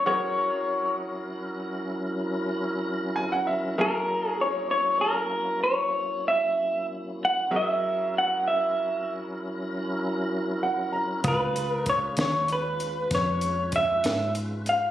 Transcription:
0.05 3.75 F#3 medium
0.05 3.75 F#3 soft
0.05 3.75 C#4 medium
0.05 3.75 E4 medium
0.05 3.75 G#4 soft
0.05 3.75 A#4 medium
0.05 3.76 A#4 soft
0.05 0.96 C#5 medium
0.05 3.31 F#5 medium
3.16 3.31 G#5 medium
3.32 3.47 F#5 medium
3.47 3.76 E5 medium
3.78 7.48 F#3 medium
3.78 7.48 A#3 medium
3.78 7.48 C#4 medium
3.78 7.48 E4 medium
3.78 7.48 G#4 soft
3.78 7.48 A#4 medium
3.78 4.29 A#4 medium
3.78 7.48 E5 medium
4.29 4.41 G#4 medium
4.41 4.70 C#5 medium
4.71 5.01 C#5 medium
5.01 5.63 A#4 medium
5.64 6.28 C#5 medium
6.28 6.86 E5 medium
7.25 7.55 F#5 medium
7.51 11.20 F#3 medium
7.51 11.21 F#3 medium
7.51 11.21 C#4 medium
7.51 11.21 E4 medium
7.51 11.21 G#4 soft
7.51 11.21 A#4 medium
7.51 11.20 E5 medium
7.56 8.18 E5 medium
8.18 8.47 F#5 medium
8.48 9.12 E5 medium
10.63 10.92 F#5 medium
10.93 11.22 A#5 soft
11.24 12.15 C#2 medium
11.24 11.57 F#3 medium
11.24 11.57 A3 medium
11.24 11.57 C4 medium
11.24 11.57 D4 medium
11.24 14.91 F4 medium
11.24 14.91 B4 soft
11.24 14.91 D#6 medium
11.24 kick medium
11.24 closed hi-hat medium
11.28 11.72 B4 medium
11.56 14.91 G#3 medium
11.56 14.91 C#4 medium
11.56 14.91 F4 medium
11.56 14.91 B4 medium
11.56 closed hi-hat medium
11.72 11.89 A#4 medium
11.86 11.98 C#5 medium
11.86 kick medium
11.86 closed hi-hat soft
12.17 13.08 D#2 medium
12.17 snare loud
12.17 closed hi-hat medium
12.21 12.51 C#5 medium
12.48 closed hi-hat soft
12.53 13.14 B4 medium
12.80 closed hi-hat medium
13.11 14.02 F2 medium
13.11 13.75 C#5 medium
13.11 kick loud
13.11 snare soft
13.11 closed hi-hat medium
13.41 closed hi-hat medium
13.72 14.33 E5 medium
13.72 kick medium
13.72 closed hi-hat medium
14.04 14.91 G#2 medium
14.04 snare medium
14.04 closed hi-hat medium
14.35 closed hi-hat medium
14.66 14.91 F5 medium
14.66 closed hi-hat medium

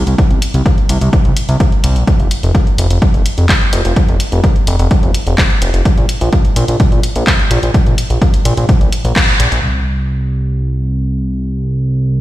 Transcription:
0.07 0.15 C2 medium
0.07 closed hi-hat soft
0.18 kick loud
0.18 closed hi-hat soft
0.30 0.39 C2 medium
0.30 closed hi-hat soft
0.42 closed hi-hat loud
0.54 0.62 C2 medium
0.54 closed hi-hat soft
0.66 kick loud
0.66 closed hi-hat soft
0.78 closed hi-hat soft
0.89 0.98 C2 loud
0.89 closed hi-hat loud
1.01 1.10 C2 medium
1.01 closed hi-hat soft
1.13 kick loud
1.13 closed hi-hat soft
1.25 1.33 C2 medium
1.25 closed hi-hat soft
1.36 closed hi-hat loud
1.49 1.57 C2 medium
1.49 closed hi-hat soft
1.60 kick loud
1.60 closed hi-hat soft
1.72 closed hi-hat soft
1.84 1.97 C2 medium
1.84 closed hi-hat loud
1.96 2.04 A#1 medium
1.96 closed hi-hat soft
2.07 kick loud
2.07 closed hi-hat soft
2.20 2.28 F1 medium
2.20 closed hi-hat soft
2.31 closed hi-hat loud
2.43 2.51 F1 medium
2.43 closed hi-hat soft
2.55 kick loud
2.55 closed hi-hat soft
2.67 closed hi-hat soft
2.78 2.87 F1 loud
2.78 closed hi-hat loud
2.90 2.99 F1 medium
2.90 closed hi-hat medium
3.02 kick loud
3.02 closed hi-hat soft
3.14 3.22 F1 medium
3.14 closed hi-hat soft
3.26 closed hi-hat loud
3.38 3.46 F1 medium
3.38 closed hi-hat soft
3.49 kick loud
3.49 clap loud
3.49 closed hi-hat soft
3.61 closed hi-hat soft
3.73 3.81 F1 loud
3.73 closed hi-hat loud
3.85 3.93 F1 medium
3.85 closed hi-hat soft
3.96 kick loud
3.96 closed hi-hat soft
4.09 4.17 F1 medium
4.09 closed hi-hat soft
4.20 closed hi-hat loud
4.32 4.40 F1 medium
4.32 closed hi-hat soft
4.44 kick loud
4.44 closed hi-hat soft
4.56 closed hi-hat soft
4.67 4.76 F1 medium
4.67 closed hi-hat loud
4.79 4.88 F1 medium
4.79 closed hi-hat soft
4.91 kick loud
4.91 closed hi-hat soft
5.03 5.11 F1 medium
5.03 closed hi-hat soft
5.14 closed hi-hat loud
5.27 5.35 F1 medium
5.27 closed hi-hat soft
5.38 kick loud
5.38 clap loud
5.38 closed hi-hat soft
5.50 closed hi-hat soft
5.62 5.70 F1 medium
5.62 closed hi-hat loud
5.74 5.82 F1 medium
5.74 closed hi-hat soft
5.85 kick loud
5.85 closed hi-hat soft
5.98 6.06 A#1 medium
5.98 closed hi-hat soft
6.09 closed hi-hat loud
6.21 6.29 A#1 medium
6.21 closed hi-hat soft
6.33 kick loud
6.33 closed hi-hat soft
6.45 closed hi-hat soft
6.56 6.65 A#1 loud
6.56 closed hi-hat loud
6.68 6.77 A#1 medium
6.68 closed hi-hat medium
6.80 kick loud
6.80 closed hi-hat soft
6.92 7.00 A#1 medium
6.92 closed hi-hat soft
7.03 closed hi-hat loud
7.16 7.24 A#1 medium
7.16 closed hi-hat soft
7.27 kick loud
7.27 clap loud
7.27 closed hi-hat soft
7.39 closed hi-hat soft
7.51 7.59 A#1 medium
7.51 closed hi-hat loud
7.63 7.71 A#1 medium
7.63 closed hi-hat soft
7.74 kick loud
7.74 closed hi-hat soft
7.87 7.95 A#1 medium
7.87 closed hi-hat soft
7.98 closed hi-hat loud
8.10 8.18 A#1 medium
8.10 closed hi-hat soft
8.22 kick loud
8.22 closed hi-hat soft
8.34 closed hi-hat medium
8.45 8.54 A#1 loud
8.45 closed hi-hat loud
8.57 8.66 A#1 medium
8.57 closed hi-hat soft
8.69 kick loud
8.69 closed hi-hat soft
8.81 8.89 A#1 medium
8.81 closed hi-hat soft
8.92 closed hi-hat loud
9.05 9.13 A#1 medium
9.05 closed hi-hat soft
9.16 kick loud
9.16 clap loud
9.16 closed hi-hat soft
9.28 closed hi-hat soft
9.40 9.48 A#1 loud
9.40 closed hi-hat loud
9.52 9.60 A#1 medium
9.52 closed hi-hat soft
9.63 12.21 C2 medium

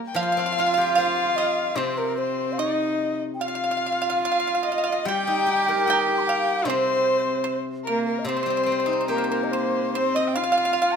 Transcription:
0.00 0.96 G3 medium
0.08 0.17 G5 medium
0.15 2.58 F3 medium
0.15 1.78 F4 medium
0.15 1.38 F5 loud
0.15 0.96 F5 loud
0.15 0.22 F5 medium
0.23 0.30 F5 soft
0.32 0.38 F5 medium
0.37 1.98 C4 soft
0.37 0.45 F5 soft
0.46 0.51 F5 medium
0.52 0.59 F5 soft
0.58 2.19 F4 soft
0.58 0.65 F5 medium
0.66 0.73 F5 medium
0.74 2.38 G4 soft
0.74 0.80 F5 medium
0.81 0.88 F5 medium
0.95 2.59 C5 soft
0.95 1.33 F5 medium
0.95 1.78 F5 medium
1.36 1.79 D#5 medium
1.36 1.75 D#5 medium
1.76 4.24 C3 medium
1.76 2.60 C4 medium
1.76 1.99 C5 medium
1.76 2.00 C5 medium
1.76 2.26 C5 medium
1.97 2.17 A#4 medium
1.97 2.19 A#4 medium
2.18 2.54 C5 medium
2.18 2.60 C5 medium
2.26 2.55 A#4 medium
2.53 2.61 F5 medium
2.58 3.20 D#4 medium
2.58 3.20 D#5 medium
2.58 3.17 D#5 medium
2.58 3.21 D#5 medium
3.34 3.43 G5 medium
3.41 5.10 F4 medium
3.41 3.47 F5 medium
3.41 4.65 F5 loud
3.41 4.21 F5 medium
3.48 3.54 F5 soft
3.55 3.63 F5 medium
3.64 3.70 F5 medium
3.71 3.76 F5 medium
3.77 3.85 F5 soft
3.86 3.91 F5 medium
3.92 4.00 F5 soft
4.02 4.08 F5 medium
4.10 4.16 F5 medium
4.24 4.63 F5 medium
4.24 4.30 F5 medium
4.32 4.38 F5 soft
4.40 4.46 F5 medium
4.47 4.53 F5 soft
4.55 4.61 F5 medium
4.63 5.07 D#5 medium
4.63 5.09 D#5 medium
4.63 4.69 F5 soft
4.72 4.77 F5 soft
4.78 4.82 F5 soft
4.84 4.91 F5 medium
4.92 4.99 F5 medium
5.05 7.45 G3 medium
5.05 6.69 G4 loud
5.05 5.84 G5 loud
5.05 6.17 G5 loud
5.05 5.84 G5 medium
5.27 6.87 D#4 soft
5.46 7.06 G4 soft
5.68 7.27 A#4 soft
5.85 7.46 D#5 soft
5.85 5.94 G5 medium
5.90 6.26 G5 medium
5.90 6.00 A#5 medium
5.99 6.66 G5 medium
6.18 6.23 A#5 medium
6.18 6.20 C6 soft
6.23 6.69 F5 loud
6.23 6.29 G5 medium
6.29 6.65 F5 medium
6.65 8.23 C3 medium
6.65 7.60 C4 medium
6.65 7.59 C5 loud
6.65 7.61 C5 loud
6.70 7.38 C5 medium
7.44 7.61 C5 medium
7.84 8.29 A#3 medium
7.84 8.03 A#4 medium
7.84 8.23 A#4 medium
7.84 8.05 A#4 medium
8.06 8.26 A#4 medium
8.06 8.21 A#4 medium
8.19 8.28 D#5 medium
8.25 10.75 C3 medium
8.25 9.09 C4 medium
8.25 9.07 C5 medium
8.25 9.08 C5 medium
8.29 8.34 C5 medium
8.37 8.41 C5 soft
8.43 10.14 G3 soft
8.43 8.48 C5 medium
8.50 8.56 C5 soft
8.57 8.62 C5 soft
8.63 10.35 C4 soft
8.63 8.69 C5 soft
8.72 8.78 C5 soft
8.80 8.85 C5 soft
8.86 10.55 D#4 soft
8.86 8.92 C5 soft
8.93 8.99 C5 soft
9.01 9.07 C5 soft
9.08 9.97 A#3 medium
9.08 10.76 G4 soft
9.08 9.28 A#4 medium
9.08 9.15 C5 soft
9.18 9.23 C5 medium
9.24 9.30 C5 soft
9.29 9.53 A#4 medium
9.29 9.45 A#4 medium
9.29 9.38 C5 medium
9.44 9.53 D#5 medium
9.51 9.93 C5 medium
9.51 9.94 C5 medium
9.51 9.91 C5 medium
9.93 10.38 C4 medium
9.93 10.16 C5 loud
9.93 10.17 C5 medium
9.93 10.14 C5 medium
10.15 10.35 D#5 medium
10.15 10.34 D#5 medium
10.15 10.29 D#5 medium
10.27 10.37 G5 medium
10.34 10.96 F4 medium
10.34 10.96 F5 medium
10.34 10.42 F5 medium
10.34 10.94 F5 medium
10.44 10.50 F5 medium
10.52 10.56 F5 medium
10.58 10.64 F5 medium
10.65 10.72 F5 medium
10.73 10.79 F5 medium
10.82 10.87 F5 medium
10.93 10.96 A#5 medium

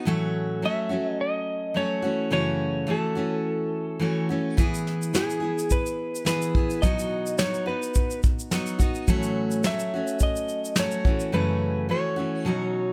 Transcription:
0.05 0.63 A2 medium
0.05 0.65 E3 medium
0.05 0.62 F#3 medium
0.05 0.63 A3 medium
0.05 0.64 C#4 medium
0.05 0.65 F#4 medium
0.62 0.91 F#3 soft
0.62 0.90 A3 medium
0.62 0.89 C#4 medium
0.62 0.88 F#4 medium
0.62 1.06 E5 medium
0.89 1.74 F#3 soft
0.89 1.75 A3 soft
0.89 1.76 C#4 soft
0.89 1.77 F#4 soft
1.06 1.21 D#5 medium
1.21 1.79 D#5 medium
1.74 2.03 F#3 medium
1.74 2.03 A3 medium
1.74 2.03 C#4 medium
1.74 2.01 F#4 medium
1.74 2.32 C#5 medium
2.02 2.30 E3 soft
2.02 2.31 A3 soft
2.02 2.31 C#4 soft
2.02 2.31 F#4 soft
2.30 2.88 F#2 medium
2.30 2.88 C#3 medium
2.30 2.86 E3 medium
2.30 2.87 A3 medium
2.30 2.88 C#4 medium
2.30 2.89 F#4 medium
2.30 2.91 C#5 medium
2.87 3.16 E3 medium
2.87 3.16 A3 medium
2.87 3.15 C#4 soft
2.87 3.14 F#4 medium
2.91 4.27 A4 medium
3.15 3.99 E3 soft
3.15 4.00 A3 soft
3.15 4.00 C#4 soft
3.15 4.01 F#4 soft
3.99 4.29 E3 medium
3.99 4.29 A3 medium
3.99 4.29 C#4 medium
3.99 4.28 F#4 medium
4.29 4.56 E3 soft
4.29 4.58 A3 soft
4.29 4.58 C#4 medium
4.29 4.58 F#4 soft
4.57 5.12 E3 medium
4.57 5.14 B3 medium
4.57 5.15 E4 medium
4.57 5.15 G#4 medium
4.57 kick loud
4.57 shaker medium
4.75 shaker soft
4.87 snare soft
5.02 shaker soft
5.13 5.42 E3 soft
5.13 5.43 B3 soft
5.13 5.41 E4 medium
5.13 5.73 G#4 medium
5.13 5.39 G#4 soft
5.13 snare medium
5.13 shaker soft
5.30 shaker soft
5.40 6.27 B3 soft
5.40 6.26 E4 soft
5.40 6.26 G#4 soft
5.59 shaker soft
5.70 6.24 B4 medium
5.70 kick medium
5.70 shaker medium
5.86 shaker soft
6.15 shaker soft
6.25 6.54 E3 medium
6.25 6.55 B3 soft
6.25 6.55 E4 medium
6.25 6.54 G#4 medium
6.25 6.85 B4 medium
6.25 snare medium
6.25 shaker medium
6.42 shaker soft
6.55 6.83 B3 soft
6.55 6.84 E4 soft
6.55 6.83 G#4 soft
6.55 kick medium
6.70 shaker soft
6.82 7.39 B2 medium
6.82 7.39 F#3 medium
6.82 7.39 B3 medium
6.82 7.40 D#4 medium
6.82 7.42 F#4 medium
6.82 7.38 D#5 loud
6.82 kick medium
6.82 shaker medium
6.99 shaker soft
7.26 shaker soft
7.38 7.67 F#3 medium
7.38 7.68 B3 medium
7.38 7.67 D#4 medium
7.38 7.65 C#5 medium
7.38 snare medium
7.38 shaker medium
7.42 7.64 F#4 medium
7.54 shaker soft
7.66 8.51 B3 soft
7.66 8.52 D#4 soft
7.66 8.54 F#4 medium
7.66 8.20 B4 medium
7.83 shaker soft
7.94 kick medium
7.94 shaker medium
8.11 shaker soft
8.23 kick medium
8.23 shaker soft
8.39 shaker medium
8.51 8.80 F#3 medium
8.51 8.80 B3 medium
8.51 8.80 D#4 medium
8.51 8.77 F#4 medium
8.51 snare medium
8.51 shaker medium
8.66 shaker soft
8.79 9.09 B3 soft
8.79 9.09 D#4 soft
8.79 9.07 F#4 medium
8.79 kick medium
8.79 shaker soft
8.95 shaker soft
9.08 9.64 A2 medium
9.08 9.67 E3 medium
9.08 9.63 F#3 medium
9.08 9.64 A3 medium
9.08 9.65 C#4 medium
9.08 9.67 F#4 medium
9.08 kick medium
9.08 shaker soft
9.23 shaker soft
9.51 shaker soft
9.64 9.92 F#3 medium
9.64 9.93 A3 medium
9.64 9.93 C#4 soft
9.64 9.92 F#4 medium
9.64 10.18 E5 medium
9.64 snare loud
9.64 shaker medium
9.79 shaker soft
9.94 10.77 F#3 soft
9.94 10.77 A3 soft
9.94 10.79 C#4 soft
9.94 10.80 F#4 soft
10.07 shaker soft
10.19 10.74 D#5 medium
10.19 kick medium
10.19 shaker medium
10.36 shaker soft
10.49 shaker soft
10.65 shaker soft
10.76 11.05 F#3 medium
10.76 11.06 A3 medium
10.76 11.04 C#4 medium
10.76 11.36 C#5 medium
10.76 snare medium
10.76 shaker medium
10.81 11.03 F#4 medium
10.91 shaker soft
11.04 11.32 E3 soft
11.04 11.32 A3 soft
11.04 11.33 C#4 soft
11.04 11.33 F#4 soft
11.04 kick medium
11.20 shaker soft
11.32 11.89 F#2 medium
11.32 11.89 C#3 medium
11.32 11.88 E3 medium
11.32 11.88 A3 medium
11.32 11.90 C#4 medium
11.32 11.90 F#4 medium
11.32 11.86 B4 medium
11.89 12.17 E3 soft
11.89 12.18 A3 medium
11.89 12.16 C#4 soft
11.89 12.15 F#4 medium
11.89 12.93 C#5 medium
12.16 12.45 E3 soft
12.16 12.46 A3 soft
12.16 12.45 C#4 soft
12.16 12.45 F#4 medium
12.45 12.93 B2 medium
12.45 12.93 F#3 medium
12.45 12.93 C#4 medium
12.45 12.93 D#4 medium
12.45 12.93 F#4 medium

